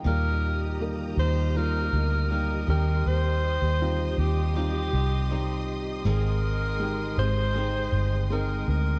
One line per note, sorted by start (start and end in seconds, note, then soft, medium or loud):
0.04 1.14 D#2 medium
0.04 1.14 A#2 medium
0.04 2.71 D#3 medium
0.04 0.77 G3 medium
0.04 1.18 A#3 medium
0.04 0.77 A#3 medium
0.04 1.18 D#4 medium
0.04 0.77 D#4 medium
0.04 2.66 G4 medium
0.04 1.17 G4 medium
0.04 0.78 G4 medium
0.04 0.77 A#4 loud
0.04 8.99 D#5 medium
0.04 2.66 A#5 medium
0.04 8.99 D#6 medium
0.80 1.51 G3 medium
0.80 1.52 A#3 medium
0.80 1.52 D#4 medium
0.80 1.52 A#4 medium
1.17 1.89 D#2 loud
1.17 1.55 A#3 soft
1.17 1.56 D#4 soft
1.17 1.55 G4 medium
1.17 1.58 C5 loud
1.55 2.27 G3 medium
1.55 2.27 A#3 medium
1.55 2.30 A#3 medium
1.55 2.27 D#4 medium
1.55 2.31 D#4 medium
1.55 2.27 F4 medium
1.55 2.32 G4 medium
1.55 2.31 A#4 loud
1.93 2.64 D2 medium
2.30 2.66 G3 medium
2.30 2.68 A#3 medium
2.30 2.67 D#4 medium
2.30 2.68 G4 medium
2.30 2.66 G4 medium
2.30 2.66 A#4 medium
2.67 3.03 D#2 loud
2.67 3.77 D#3 medium
2.67 3.74 G3 medium
2.67 3.75 C4 medium
2.67 4.55 C4 medium
2.67 3.75 D#4 medium
2.67 4.56 D#4 medium
2.67 4.55 G4 medium
2.67 3.75 G4 medium
2.67 6.03 G4 medium
2.67 3.09 A#4 medium
2.67 8.99 C6 medium
2.72 4.54 D#3 medium
3.06 3.58 D#2 loud
3.06 4.19 C5 loud
3.62 4.14 D#2 medium
3.80 4.52 G3 medium
3.80 4.52 C4 medium
3.80 4.52 D#4 medium
3.80 4.52 F4 medium
4.18 4.89 D#2 loud
4.18 4.54 G4 medium
4.54 5.29 D#3 medium
4.54 5.26 G3 medium
4.54 5.27 C4 medium
4.54 5.30 C4 medium
4.54 5.27 D#4 medium
4.54 5.31 D#4 medium
4.54 5.27 F4 medium
4.54 5.64 G4 medium
4.54 5.31 G4 medium
4.93 6.02 C2 medium
5.30 6.05 D#3 medium
5.30 6.02 G3 medium
5.30 6.05 C4 medium
5.30 6.02 C4 medium
5.30 6.02 D#4 medium
5.30 6.06 D#4 medium
5.30 6.02 G4 medium
5.30 6.06 G4 medium
6.05 7.14 G#1 loud
6.05 7.18 G#2 medium
6.05 7.14 G#2 medium
6.05 8.99 D#3 medium
6.05 7.14 D#3 medium
6.05 8.99 G#3 medium
6.05 6.77 G#3 medium
6.05 7.18 G#3 medium
6.05 7.18 C4 medium
6.05 6.77 C4 medium
6.05 6.77 D#4 medium
6.05 7.18 D#4 medium
6.05 6.77 G#4 medium
6.05 7.16 G#4 medium
6.05 7.14 A#4 medium
6.79 7.51 G#3 medium
6.79 7.52 C4 medium
6.79 7.52 D#4 medium
6.79 7.52 G4 medium
7.17 7.89 G#1 medium
7.17 7.53 G#3 soft
7.17 7.54 C4 soft
7.17 7.55 D#4 medium
7.17 7.55 G#4 soft
7.17 8.27 C5 loud
7.54 8.29 G#3 medium
7.54 8.27 G#3 medium
7.54 8.30 C4 medium
7.54 8.27 C4 medium
7.54 8.32 D#4 medium
7.54 8.27 D#4 medium
7.54 8.28 G#4 medium
7.54 8.31 G#4 medium
7.92 8.64 G1 loud
8.30 8.99 G#3 medium
8.30 8.99 C4 medium
8.30 8.99 D#4 medium
8.30 8.99 G#4 medium
8.30 8.66 A#4 medium
8.30 8.99 A#4 medium
8.68 8.99 D2 loud
8.68 8.99 A#4 medium